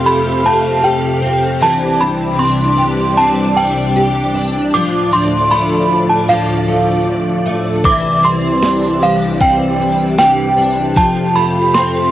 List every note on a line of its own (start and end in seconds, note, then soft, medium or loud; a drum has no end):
0.00 1.58 F2 medium
0.00 4.69 C3 medium
0.00 1.60 F3 medium
0.00 1.58 A3 medium
0.00 0.43 C4 medium
0.00 0.83 G4 medium
0.00 1.57 G4 medium
0.00 1.58 F5 medium
0.05 1.69 A3 medium
0.05 0.46 B5 medium
0.44 1.21 C4 medium
0.44 0.85 A5 medium
0.83 2.77 G4 medium
0.83 1.64 G5 medium
1.21 2.00 C4 medium
1.61 4.70 C2 medium
1.61 4.73 E3 medium
1.61 4.70 G3 medium
1.61 7.80 D4 medium
1.61 10.92 D5 medium
1.61 2.02 A5 medium
2.00 3.15 C4 medium
2.00 2.40 B5 medium
2.38 3.56 D4 medium
2.38 3.19 C6 medium
2.77 3.95 G4 medium
3.17 4.80 C4 medium
3.17 3.57 A5 medium
3.56 4.34 D4 medium
3.56 4.30 G5 medium
3.96 4.81 G4 medium
4.34 7.87 D4 medium
4.73 7.82 D2 medium
4.73 7.81 A2 medium
4.73 7.82 F3 medium
4.73 5.10 F3 medium
4.73 5.13 D6 medium
5.11 6.27 F3 soft
5.11 5.52 C6 medium
5.50 6.66 A3 medium
5.50 6.11 B5 medium
6.10 6.28 A5 medium
6.28 7.84 F3 medium
6.28 7.42 F5 medium
6.68 7.44 A3 medium
7.46 7.92 A3 medium
7.84 10.93 C2 medium
7.84 12.11 C3 medium
7.84 10.95 E3 medium
7.84 10.93 E3 medium
7.84 10.93 G3 medium
7.84 8.25 D6 medium
7.84 kick loud
7.84 closed hi-hat medium
8.23 9.40 C4 soft
8.23 8.98 C6 medium
8.62 9.78 D4 medium
8.62 snare medium
8.62 closed hi-hat medium
9.02 10.18 G4 medium
9.02 9.42 F5 medium
9.40 11.34 C4 medium
9.40 10.17 G5 medium
9.40 kick medium
9.40 closed hi-hat medium
9.79 10.56 D4 soft
10.18 11.38 G4 medium
10.18 10.99 G5 medium
10.18 snare loud
10.18 closed hi-hat medium
10.57 11.04 D4 medium
10.96 12.11 F2 medium
10.96 12.11 F3 medium
10.96 12.11 A3 medium
10.96 12.11 G4 medium
10.96 12.11 F5 medium
10.96 11.37 A5 medium
10.96 kick medium
10.96 closed hi-hat medium
11.35 12.11 A3 soft
11.35 11.75 B5 medium
11.74 12.11 C4 medium
11.74 12.11 C6 medium
11.74 snare medium
11.74 closed hi-hat medium